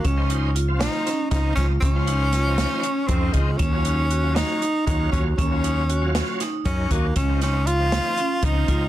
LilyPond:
<<
  \new Staff \with { instrumentName = "Vibraphone" } { \time 7/8 \key des \major \tempo 4 = 118 des'8 ees'8 f'4 des'4 f'8 | des'8 ees'8 f'4 des'4 f'8 | des'8 ees'8 ges'4 ees'4 ges'8 | des'8 ees'8 ges'4 ees'4 ges'8 |
des'8 ees'8 f'4 des'4 f'8 | }
  \new Staff \with { instrumentName = "Tenor saxophone" } { \time 7/8 \key des \major des'4 r8 ees'4 ees'8 des'8 | des'2~ des'8 c'8 aes8 | des'4. ees'4 ees'8 des'8 | des'2 r8 des'8 bes8 |
des'8 des'8 f'4. ees'4 | }
  \new Staff \with { instrumentName = "Tonewheel organ" } { \time 7/8 \key des \major r16 <f ees' c''>8. r16 <f c' f'>8. r8 <f c' ees'>8. r16 | r16 <f f' c''>8. r16 <f ees' c''>8. r8 <f c' ees'>8. r16 | r16 <ges des' f'>8. r16 <ges des' f'>8. r8 <ges des' f'>8. r16 | r16 <ges des' f'>8. r16 <ges des' f'>8. r8 <ges des' ees'>8. r16 |
r16 <f c' ees'>8. r16 <f c' ees'>8. r8 <f c' ees'>8. r16 | }
  \new Staff \with { instrumentName = "Fretless electric bass" } { \clef bass \time 7/8 \key des \major des,2 r8 des,8 des,8 | des,2 r8 f,8 des,8 | ees,2 r8 ees,8 ees,8 | ees,2 r8 ges,8 ees,8 |
des,2 r8 des,8 des,8 | }
  \new DrumStaff \with { instrumentName = "Drums" } \drummode { \time 7/8 <hh bd>8 hh8 hh8 <hh sn>8 <hh sn>8 <hh bd sn>8 <hh bd sn>8 | <hh bd>8 hh8 <hh sn>8 <hh sn>8 hh8 <hh bd>8 <hh bd>8 | <hh bd>8 hh8 hh8 <hh sn>8 hh8 <hh bd>8 <hh bd>8 | <hh bd>8 hh8 hh8 <hh sn>8 <hh sn>8 <hh bd>8 <hh bd>8 |
<hh bd>8 <hh sn>8 hh8 <hh sn>8 hh8 <hh bd>8 <hh bd>8 | }
>>